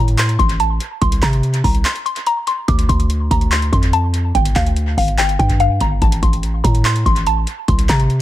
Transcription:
Already playing: A2 A#5
0.08 closed hi-hat
0.18 C6, clap, closed hi-hat
0.29 closed hi-hat
0.39 A1 C6, kick, closed hi-hat
0.49 closed hi-hat
0.60 A5, closed hi-hat
0.80 closed hi-hat
1.01 C2 C6, kick, closed hi-hat
1.12 closed hi-hat
1.22 C3 A#5, kick, clap, closed hi-hat
1.33 closed hi-hat
1.43 closed hi-hat
1.54 closed hi-hat
1.64 C2 A#5, kick, open hi-hat
1.75 closed hi-hat
1.85 C6, clap, closed hi-hat
1.96 closed hi-hat
2.06 C6, closed hi-hat
2.16 closed hi-hat
2.26 A#5, closed hi-hat
2.47 C6, closed hi-hat
2.68 D2 D6, kick, closed hi-hat
2.79 closed hi-hat
2.89 D2 C6, kick, closed hi-hat
3.00 closed hi-hat
3.10 closed hi-hat
3.31 D2 A#5, kick, closed hi-hat
3.41 closed hi-hat
3.51 C6, clap, closed hi-hat
3.62 closed hi-hat
3.72 F2 C6, kick, closed hi-hat
3.83 closed hi-hat
3.93 A5, closed hi-hat
4.14 closed hi-hat
4.35 G1 G5, kick, closed hi-hat
4.45 closed hi-hat
4.56 D2 F5, kick, clap, closed hi-hat
4.66 closed hi-hat
4.76 closed hi-hat
4.97 G1 F5, kick, open hi-hat
5.08 closed hi-hat
5.18 G5, clap, closed hi-hat
5.29 closed hi-hat
5.39 G2 G5, kick, closed hi-hat
5.50 kick, closed hi-hat
5.60 F5, closed hi-hat
5.81 G1 A#5, kick, closed hi-hat
6.02 A1 A5, kick, closed hi-hat
6.12 closed hi-hat
6.23 A1 C6, kick, closed hi-hat
6.33 closed hi-hat
6.43 closed hi-hat
6.64 A2 A#5, kick, closed hi-hat
6.75 closed hi-hat
6.85 C6, clap, closed hi-hat
6.96 closed hi-hat
7.06 A1 C6, kick, closed hi-hat
7.16 closed hi-hat
7.27 A5, closed hi-hat
7.47 closed hi-hat
7.68 C2 C6, kick, closed hi-hat
7.79 closed hi-hat
7.89 C3 A#5, kick, clap, closed hi-hat
8.00 closed hi-hat
8.10 closed hi-hat

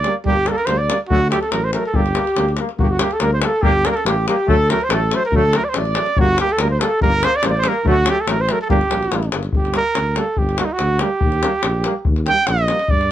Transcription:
Already playing: D5
0.04 G3 A#3, davul high
0.25 G1 G3 A#3 G4, davul low
0.46 G3 A#3 A4 A#4, davul high
0.51 A4 A#4
0.55 A4 A#4, davul high
0.61 A#4
0.66 D2 G3 A#3 C5, davul high
0.71 C5
0.78 D5
0.88 G3 A#3, davul high
1.08 D2 F#3 A3 F#4, davul low
1.13 F#4
1.29 F#3 A3 G4, davul high
1.35 G4
1.41 A4, davul high
1.46 A3 A4
1.51 A1 F#3 A#4, davul high
1.57 A#4
1.64 C5
1.72 F#3 A3 A#4 C5, davul high
1.80 A#4
1.86 A4
1.93 G1 G3 A#3 G4 A4, davul low
2.02 G4
2.06 davul high
2.15 G3 A#3, davul high
2.27 davul high
2.36 D2 G3 A#3, davul high
2.49 davul high
2.57 G3 A#3, davul high
2.69 davul high
2.79 G1 G3 A#3 F#4, davul low
2.83 G4
2.88 F#4 G4
2.94 F#4
2.99 G3 A#3 G4, davul high
3.04 G4
3.11 A4, davul high
3.16 A#3 A4, davul high
3.21 D2 G3 A#4
3.27 A#4
3.33 C5
3.41 G3 A#3 A4, davul high
3.47 A4
3.62 G1 G3 A#3 G4, davul low
3.68 G4
3.84 G3 A#3 A4 A#4, davul high
3.90 A#4
3.96 A4, davul high
4.04 A1 G3 A#3 G4, davul high
4.27 G3 A#3 G4, davul high
4.47 D2 F#3 A3 A4, davul low
4.69 F#3 A3 A#4, davul high
4.81 C5, davul high
4.89 A1 F#3 A3 A4, davul high
5.11 F#3 A3 C5, davul high
5.25 A#4
5.31 D2 F#3 A3, davul low
5.36 A4
5.53 F#3 A3 A#4, davul high
5.58 A#4
5.64 D5
5.69 C5
5.74 A1 F#3 A3 D5, davul high
5.80 D5
5.85 davul high
5.95 F#3 A3, davul high
6.06 davul high
6.17 G1 G3 A#3 F#4, davul low
6.38 G3 A#3 G4, davul high
6.49 A4, davul high
6.58 D2 G3 A#3 A#4, davul high
6.70 C5
6.80 G3 A#3 A4, davul high
7.01 G1 G3 A#3 A#4, davul low
7.21 G3 A#3 C5, davul high
7.25 C5
7.34 D5, davul high
7.43 A1 G3 A#3 C5, davul high
7.49 D5
7.56 C5
7.64 G3 A#3 A#4, davul high
7.68 A#4
7.85 D2 F#3 A3, davul low
7.89 F#4
8.06 F#3 A3 G4, davul high
8.10 G4
8.21 A4
8.26 A1 F#3 A3 A#4, davul high
8.40 C5
8.48 F#3 A3 A#4, davul high
8.61 A4
8.69 G1 G3 A#3 G4, davul low
8.81 davul high
8.90 A#1 G3 A#3, davul high
9.03 davul high
9.11 A1 G3 A#3, davul high
9.23 davul high
9.32 G1 G3 A#3, davul high
9.43 davul high
9.53 G1 G4, davul low
9.65 davul high
9.73 G3 A#3 A#4, davul high
9.95 D2, davul high
10.16 G3 A#3 A4, davul high
10.37 G1 G4, davul low
10.49 davul high
10.58 G3 A#3 F#4, davul high
10.65 D#4
10.73 F#4
10.79 D2, davul high
10.99 G3 A#3 G4, davul high
11.21 D#2, davul low
11.32 davul high
11.43 G3 A#3, davul high
11.63 A#1, davul high
11.84 G3 A#3, davul high
12.05 D#2, davul low
12.16 davul high
12.27 G3 A#3 G5, davul high
12.39 davul high
12.47 A#1 D#5, davul high
12.58 davul high
12.68 G3 A#3, davul high
12.79 davul high
12.88 G2 D5, davul low
13.01 davul high

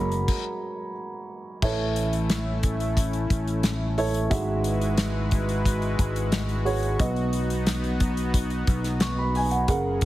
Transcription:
Already playing: F#1 F#3 G#3 A#3 C#4 G#4 A#4 C#5 F#5 A#5 B5
0.12 closed hi-hat
0.28 kick, crash
1.62 A1 A2 E3 A3 C#4 E4 A4 C#5, kick, crash
1.96 closed hi-hat
2.13 closed hi-hat
2.30 snare, closed hi-hat
2.63 kick, closed hi-hat
2.80 closed hi-hat
2.97 kick, closed hi-hat
3.13 closed hi-hat
3.30 A1, kick, closed hi-hat
3.48 closed hi-hat
3.63 snare, closed hi-hat
3.98 E4 A4 C#5, open hi-hat
4.14 closed hi-hat
4.30 G#1 G#2 G#3 E4 F#4 G#4 B4 E5, kick, closed hi-hat
4.64 closed hi-hat
4.82 closed hi-hat
4.98 snare, closed hi-hat
5.31 kick, closed hi-hat
5.49 closed hi-hat
5.65 kick, closed hi-hat
5.82 closed hi-hat
5.99 G#1, kick, closed hi-hat
6.16 closed hi-hat
6.32 snare, closed hi-hat
6.49 closed hi-hat
6.65 F#4 G#4 C#5, open hi-hat
6.83 closed hi-hat
6.99 B1 B2 F#3 B3 D#4 F#4 B4 D#5, kick, closed hi-hat
7.16 closed hi-hat
7.33 closed hi-hat
7.50 closed hi-hat
7.67 snare, closed hi-hat
7.84 closed hi-hat
8.00 kick, closed hi-hat
8.17 closed hi-hat
8.34 kick, closed hi-hat
8.50 closed hi-hat
8.67 B1, kick, closed hi-hat
8.84 snare, closed hi-hat
9.00 C#6, snare, closed hi-hat
9.18 B5
9.35 G#5, open hi-hat
9.51 F#5, closed hi-hat
9.68 F#1 C#3 F#3 C#4 G#4 A#4 F#5, kick, closed hi-hat
10.01 closed hi-hat

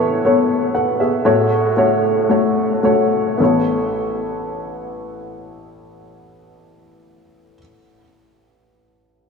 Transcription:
Already playing: A2 E3 B3 A4 C#5
0.25 B3 A4 C#5
0.75 A4 F#5
1.00 G#4 E5
1.25 A2 A3 F#4 C#5
1.77 A3 F#4 C#5
2.29 A3 F#4 C#5
2.83 A3 F#4 C#5
3.38 A1 B3 A4
3.44 C#5

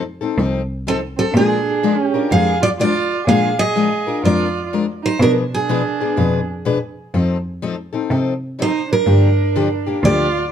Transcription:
Already playing: F2
0.21 C4 D#4 A4
0.38 C2 F3 C4 D#4 A4
0.87 F3 C4 D#4 A4
1.17 C4 A4
1.34 A#2 F3 G#3 D4 F4 G#4 A#4
1.83 F3 G#3 D4 F4 A#4
1.97 C#4
2.03 G4
2.14 D4 F4 A#4
2.31 F2 F3 G#3 D4 F4 G#4 A#4 F5
2.62 F4 D5
2.79 F3 G#3 D4 F4 A#4 D5
3.28 A#2 F3 G#3 D4 F4 G#4 A#4 F5
3.58 G#4 D#5
3.75 F3 G#3 D4 F4 A#4
4.07 D4 F4 A#4
4.24 F2 F3 G#3 D4 F4 A#4 D5
4.73 F3 G#3 D4 F4 A#4
5.03 D#4 C5
5.20 B2 F3 B3 D4 G#4 A#4 B4
5.52 D4 G#4
5.69 B2 F3 B3 D4 G#4 B4
6.00 B3 D4 G#4 B4
6.17 F2 B2 F3 B3 D4 G#4 B4
6.65 B2 F3 B3 D4 G#4 B4
7.14 F2 F3 C4 D#4 A4
7.62 F3 C4 D#4 A4
7.93 C4 D#4 A4
8.10 C3 F3 C4 D#4 A4
8.59 F3 C4 D#4 A4 C5
8.91 D4 A#4
9.06 G2 D3 F3 A#3 D4 G4
9.56 D3 F3 A#3 D4 G4
9.86 A#3 D4 G4
10.03 D2 D3 F3 A#3 D4 F4 G4 D5

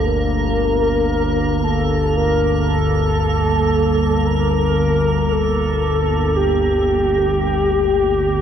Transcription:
Already playing: G1 D2 A#3
0.06 A#4
1.64 A4
2.16 A#4
2.68 A4
4.26 A#4
5.32 A4
6.36 G4

